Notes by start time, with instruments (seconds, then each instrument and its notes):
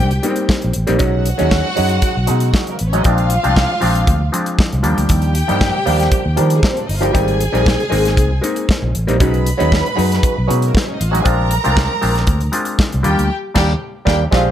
Already playing: clav G3 A#3 C4 D4, violin section G4 G5
0.00 fingered electric bass C2
0.11 closed hi-hat
0.23 clav G3 A#3 B3 D#4, closed hi-hat
0.30 clav C4
0.36 closed hi-hat
0.49 kick, snare
0.62 fingered electric bass A#1, closed hi-hat
0.73 fingered electric bass A1, closed hi-hat
0.87 fingered electric bass A#1, clav G3 A#3 C4 D#4, closed hi-hat
0.98 fingered electric bass B1, clav F#3 G#3 C#4 D#4, violin section F#4 F#5, kick, closed hi-hat
1.26 closed hi-hat
1.38 fingered electric bass D#2, clav F#3 G#3 C#4 D#4, closed hi-hat
1.51 kick, snare
1.76 fingered electric bass F#2, clav F#3 G#3 C#4 D#4, open hi-hat
1.89 closed hi-hat
2.02 kick, closed hi-hat
2.17 fingered electric bass B1
2.27 fingered electric bass B2, clav F#3 G#3 C#4 D#4, closed hi-hat
2.40 closed hi-hat
2.54 kick, snare
2.67 violin section A#3, closed hi-hat
2.72 violin section A#4
2.79 fingered electric bass A1, violin section B3 B4, closed hi-hat
2.89 violin section C#4 C#5
2.93 clav F#3 G#3 C#4 D#4, closed hi-hat
2.98 violin section D#4 D#5
3.04 fingered electric bass A#1, clav F3 G#3 C4 D4, violin section F4 F5, kick, closed hi-hat
3.18 closed hi-hat
3.30 closed hi-hat
3.43 fingered electric bass C2, clav F3 G#3 C4 D4, closed hi-hat
3.56 kick, snare
3.80 fingered electric bass A#1, clav F3 G#3 C4 D4, open hi-hat
3.95 closed hi-hat
4.07 fingered electric bass D2, kick, closed hi-hat
4.32 clav F3 G#3 C4 D4, closed hi-hat
4.46 closed hi-hat
4.59 kick, snare
4.72 fingered electric bass C2, closed hi-hat
4.83 fingered electric bass D#2, clav F3 G3 A#3 D4, violin section G4 G5, closed hi-hat
4.98 fingered electric bass D2, closed hi-hat
5.09 fingered electric bass D#2, kick, closed hi-hat
5.22 closed hi-hat
5.35 closed hi-hat
5.48 fingered electric bass G2, clav F3 G3 A#3 D#4, closed hi-hat
5.61 kick, snare
5.86 fingered electric bass D#2, clav F3 G3 A#3 D4, open hi-hat
6.00 snare, closed hi-hat
6.12 kick, closed hi-hat
6.26 fingered electric bass D#2
6.36 fingered electric bass D#3, clav F3 G3 A#3 D4, closed hi-hat
6.50 closed hi-hat
6.55 violin section G#3 G#4
6.63 violin section A#3 A#4, kick, snare
6.71 violin section C4 C5
6.77 violin section D4 D5, closed hi-hat
6.88 fingered electric bass G1, violin section D#4 D#5, open hi-hat
6.97 clav F3, violin section F4 F5
7.01 clav G3 A#3 D#4, violin section G4 G5, closed hi-hat
7.12 fingered electric bass G#1, clav G3 A#3 C4 D#4, violin section G#4 G#5, kick, closed hi-hat
7.28 closed hi-hat
7.41 closed hi-hat
7.52 fingered electric bass A#1, clav G3 A#3 C4 D#4, closed hi-hat
7.66 kick, snare
7.80 closed hi-hat
7.90 fingered electric bass G#1, clav G#3 A#3 C4 D#4, open hi-hat
8.05 snare, closed hi-hat
8.17 fingered electric bass C2, kick, closed hi-hat
8.41 clav G#3 A#3 C4 D#4, closed hi-hat
8.56 closed hi-hat
8.69 kick, snare
8.82 fingered electric bass A#1
8.95 fingered electric bass A1, closed hi-hat
9.07 fingered electric bass A#1, clav G3 A#3 C4 D#4, closed hi-hat
9.20 fingered electric bass B1, clav F#3 G#3 C#4 D#4, violin section B4 B5, kick, closed hi-hat
9.34 closed hi-hat
9.46 closed hi-hat
9.57 fingered electric bass D#2, clav F#3 G#3 C#4 D#4, closed hi-hat
9.72 kick, snare
9.86 closed hi-hat
9.96 fingered electric bass F#2, clav F#3 G#3 C#4 D#4, open hi-hat
10.12 snare, closed hi-hat
10.23 kick, closed hi-hat
10.38 fingered electric bass B1
10.47 fingered electric bass B2, clav F#3 G#3 C#4 D#4, closed hi-hat
10.62 closed hi-hat
10.67 violin section A#3 A#4
10.75 violin section B3 B4, kick, snare
10.85 violin section C#4 C#5
10.94 violin section D#4 D#5
11.01 fingered electric bass A1, violin section F4 F5, closed hi-hat
11.10 clav F#3 G#3 C#4 D#4, violin section F#4 F#5
11.15 closed hi-hat
11.19 violin section G#4 G#5
11.24 fingered electric bass A#1, clav G#3 C4 D4 F4, violin section A#4 A#5, kick, closed hi-hat
11.51 closed hi-hat
11.64 fingered electric bass C2, clav G#3 C4 D4 F4, closed hi-hat
11.77 kick, snare
12.01 fingered electric bass A#1, clav G#3 C4 D4 F4, open hi-hat
12.15 snare, closed hi-hat
12.27 fingered electric bass D2, kick, closed hi-hat
12.40 closed hi-hat
12.52 clav G#3 C4 D4 F4, closed hi-hat
12.65 closed hi-hat
12.79 kick, snare
12.92 fingered electric bass C2, closed hi-hat
13.03 fingered electric bass D#2, clav G3 A#3 D4 F4, violin section G4 G5, closed hi-hat
13.19 fingered electric bass D2, closed hi-hat
13.54 fingered electric bass D#2, clav G3 A#3 D4, violin section G4 G5, kick, snare, crash
14.05 fingered electric bass D#2, clav G3 A#3 D4, violin section G4 G5, kick, snare
14.31 fingered electric bass A#1, clav G#3 C4 D4 G4, violin section F4 F5, kick, snare